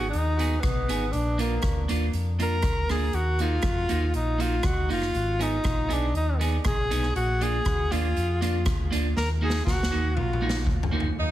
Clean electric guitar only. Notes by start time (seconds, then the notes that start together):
0.39 B3 D#4 G#4
0.89 B3 D#4 G#4
1.38 A#3 D4 F4
1.88 A#3 D4 F4
2.39 A#3 D4 F4
2.63 muted clean electric guitar stroke
2.89 A#3 D4 F4
3.40 A#3 D#4 F#4
3.89 A#3 D#4 F#4
4.38 A#3 D#4 F#4
4.89 A#3 D#4 F#4
5.39 B3 D#4 G#4
5.89 B3 D#4 G#4
6.40 B3 D#4 G#4
6.65 muted clean electric guitar stroke
6.91 B3 D#4 G#4
7.41 A#3 D4 F4
7.91 A#3 D4 F4
8.41 A#3 D4 F4
8.91 A#3 D4 F4
9.41 A#3 D#4 F#4
9.91 A#3 D#4 F#4
10.41 A#3 D#4 F#4
10.66 muted clean electric guitar stroke
10.91 A#3 D#4 F#4